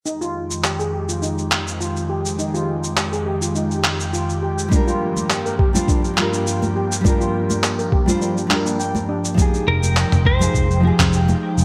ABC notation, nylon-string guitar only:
X:1
M:4/4
L:1/16
Q:"Swing 16ths" 1/4=103
K:Fdor
V:1 name="Nylon-string guitar"
z16 | z16 | [G,DFB]6- [G,DFB] [G,DFc]2 z [G,DFB]6 | [G,DFB]6- [G,DFB] [G,DFc]2 z [G,DFB]6 |
[F,EGA]6- [F,EGA] [F,EGA]2 z [F,EGA]6 |]